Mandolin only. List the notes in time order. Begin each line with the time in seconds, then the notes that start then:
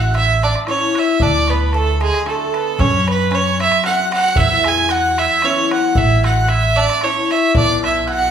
Already playing: F#4
0.14 E4
0.43 D4
0.68 C#4
0.98 E4
1.22 D4
1.51 B3
1.74 A3
2.00 G#3
2.26 A3
2.54 B3
2.79 C#4
3.07 B3
3.31 C#4
3.60 E4
3.84 F#4
4.11 F#4
4.36 E4
4.65 G#4
4.90 F#4
5.19 E4
5.43 C#4
5.71 F#4
5.95 E4
6.24 F#4
6.47 E4
6.77 D4
7.02 C#4
7.31 E4
7.56 D4
7.84 E4
8.07 F#4